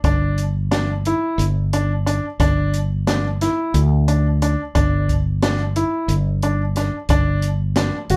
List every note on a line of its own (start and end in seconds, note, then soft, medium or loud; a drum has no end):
0.04 1.12 G1 medium
0.04 0.41 D4 medium
0.04 kick loud
0.04 closed hi-hat medium
0.38 closed hi-hat soft
0.71 0.89 D4 medium
0.71 snare medium
0.71 closed hi-hat medium
1.05 1.42 E4 medium
1.05 closed hi-hat medium
1.38 2.19 G1 loud
1.38 closed hi-hat medium
1.73 1.91 D4 medium
1.73 closed hi-hat medium
2.06 2.24 D4 medium
2.06 closed hi-hat medium
2.40 3.47 G1 medium
2.40 2.76 D4 medium
2.40 kick medium
2.40 closed hi-hat medium
2.74 closed hi-hat medium
3.07 3.25 D4 medium
3.07 snare loud
3.07 closed hi-hat medium
3.41 3.77 E4 medium
3.41 snare soft
3.41 closed hi-hat medium
3.74 4.55 D2 loud
3.74 closed hi-hat medium
4.08 4.26 D4 medium
4.08 closed hi-hat medium
4.42 4.60 D4 medium
4.42 closed hi-hat medium
4.75 5.82 G1 medium
4.75 5.11 D4 medium
4.75 kick medium
4.75 closed hi-hat medium
5.09 kick medium
5.09 closed hi-hat soft
5.42 5.60 D4 medium
5.42 snare loud
5.42 closed hi-hat medium
5.76 6.12 E4 medium
5.76 closed hi-hat medium
6.08 6.89 G1 medium
6.08 closed hi-hat medium
6.43 6.61 D4 medium
6.43 closed hi-hat medium
6.76 6.95 D4 medium
6.76 snare soft
6.76 closed hi-hat medium
7.09 7.90 G1 medium
7.09 7.46 D4 medium
7.09 kick loud
7.09 closed hi-hat medium
7.42 closed hi-hat soft
7.76 7.95 D4 medium
7.76 snare loud
7.76 closed hi-hat medium
8.10 8.17 G1 medium
8.10 8.17 F#4 medium
8.10 closed hi-hat medium